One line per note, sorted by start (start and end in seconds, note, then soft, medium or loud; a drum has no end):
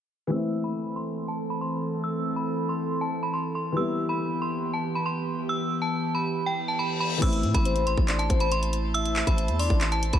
0.27 3.71 E3 medium
0.27 3.72 A3 medium
0.31 3.73 E3 medium
0.31 3.73 C4 medium
0.31 3.75 E4 medium
0.31 3.73 A4 medium
0.31 0.62 E6 medium
0.64 0.94 B5 medium
0.96 1.26 C6 medium
1.28 1.48 A5 medium
1.50 1.60 B5 medium
1.61 1.80 C6 medium
2.04 2.34 E6 loud
2.36 2.67 B5 medium
2.69 2.99 C6 medium
3.01 3.20 A5 medium
3.23 3.32 B5 medium
3.34 3.53 C6 medium
3.55 3.74 C6 medium
3.72 7.16 E3 medium
3.72 7.17 G3 medium
3.77 7.19 E3 medium
3.77 7.19 B3 medium
3.77 7.18 B3 medium
3.77 7.20 E4 medium
3.77 7.19 G4 medium
3.77 4.07 E6 loud
4.09 4.39 B5 medium
4.42 4.72 C6 medium
4.73 4.93 A5 medium
4.95 5.05 B5 medium
5.06 5.25 C6 medium
5.49 5.80 E6 loud
5.82 6.12 A5 medium
6.15 6.45 B5 medium
6.36 reverse cymbal medium
6.46 6.66 G5 medium
6.68 6.78 A5 medium
6.79 6.98 B5 medium
7.00 7.20 B5 medium
7.18 10.19 E3 medium
7.18 10.19 A3 medium
7.22 7.45 A1 loud
7.22 10.19 C4 medium
7.22 10.19 E4 medium
7.22 10.19 C5 medium
7.22 10.19 A5 medium
7.22 7.52 E6 medium
7.22 kick loud
7.22 closed hi-hat medium
7.22 crash loud
7.33 closed hi-hat medium
7.43 7.54 A2 loud
7.43 closed hi-hat medium
7.54 7.96 A1 loud
7.54 7.85 B5 medium
7.54 kick loud
7.54 closed hi-hat medium
7.65 8.06 C5 loud
7.65 closed hi-hat medium
7.76 closed hi-hat medium
7.87 8.17 C6 medium
7.87 closed hi-hat medium
7.97 8.29 A1 loud
7.97 kick medium
8.08 8.29 D5 medium
8.08 clap loud
8.08 closed hi-hat medium
8.19 8.38 A5 medium
8.19 closed hi-hat medium
8.30 9.23 A1 loud
8.30 8.50 C5 medium
8.30 kick loud
8.30 closed hi-hat medium
8.40 8.50 B5 medium
8.40 closed hi-hat medium
8.52 8.71 C6 medium
8.52 closed hi-hat medium
8.63 closed hi-hat medium
8.73 closed hi-hat medium
8.94 9.55 E5 loud
8.94 9.25 E6 loud
8.94 closed hi-hat medium
9.05 closed hi-hat medium
9.16 clap loud
9.16 closed hi-hat medium
9.27 9.50 A1 loud
9.27 9.57 B5 medium
9.27 kick loud
9.27 closed hi-hat medium
9.38 closed hi-hat medium
9.48 9.69 E2 loud
9.48 closed hi-hat medium
9.59 9.80 D5 medium
9.59 9.90 C6 medium
9.59 open hi-hat loud
9.70 10.12 A1 loud
9.70 kick medium
9.81 clap loud
9.81 closed hi-hat medium
9.92 10.11 A5 medium
9.92 closed hi-hat medium
10.03 closed hi-hat medium
10.13 10.19 A1 loud
10.13 10.19 B5 medium
10.13 kick medium
10.13 closed hi-hat medium